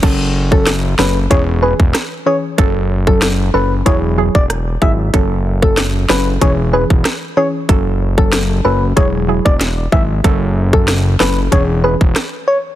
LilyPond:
<<
  \new Staff \with { instrumentName = "Soft synth lead" } { \time 4/4 \key fis \minor \tempo 4 = 94 r8. a'8 r16 b'8 cis''16 r16 b'16 r8. cis''16 r16 | r8. a'8 r16 b'8 cis''16 r8 d''16 r8 e''16 r16 | r8. a'8 r16 b'8 cis''16 r16 b'16 r8. cis''16 r16 | r8. a'8 r16 b'8 cis''16 r8 d''16 r8 e''16 r16 |
r8. a'8 r16 b'8 cis''16 r16 b'16 r8. cis''16 r16 | }
  \new Staff \with { instrumentName = "Synth pluck" } { \time 4/4 \key fis \minor <fis cis' a'>16 r8 <fis cis' a'>8. <fis cis' a'>8 <e cis' gis'>8 <e cis' gis'>16 r8. <e cis' gis'>16 r16 | <fis cis' a'>16 r8 <fis cis' a'>8. <fis cis' a'>8 <fis e' gis'>8 <fis e' gis'>16 r8. <fis e' gis'>16 r16 | <fis cis' a'>16 r8 <fis cis' a'>8. <fis cis' a'>8 <e cis' gis'>8 <e cis' gis'>16 r8. <e cis' gis'>16 r16 | <fis cis' a'>16 r8 <fis cis' a'>8. <fis cis' a'>8 <fis e' gis'>8 <fis e' gis'>16 r8. <fis e' gis'>16 r16 |
<fis cis' a'>16 r8 <fis cis' a'>8. <fis cis' a'>8 <e cis' gis'>8 <e cis' gis'>16 r4 r16 | }
  \new Staff \with { instrumentName = "Analog synth bass" } { \clef bass \time 4/4 \key fis \minor fis,,4. fis,,8 e,,8. e,,16 r4 | fis,,4. fis,,8 e,,8. e,,8. gis,,8 | fis,,4. fis,,8 e,,8. e,,16 r4 | fis,,4. fis,,8 e,,8. e,,8. gis,,8 |
fis,,4. fis,,8 e,,8. e,,16 r4 | }
  \new DrumStaff \with { instrumentName = "Drums" } \drummode { \time 4/4 <cymc hh bd>8. bd16 <hh ss sn>8 <ss sn>8 <hh bd>8. bd16 <hh ss sn>4 | <hh bd>8. bd16 <hh ss sn>4 <hh bd>8. bd16 <hh ss>8 bd8 | <hh bd>8. bd16 <hh ss sn>8 <ss sn>8 <hh bd>8. bd16 <hh ss sn>4 | <hh bd>8. bd16 <hh ss sn>4 <hh bd>8. bd16 <hh sn>8 bd8 |
<hh bd>8. bd16 <hh ss sn>8 <ss sn>8 <hh bd>8. bd16 <hh ss sn>4 | }
>>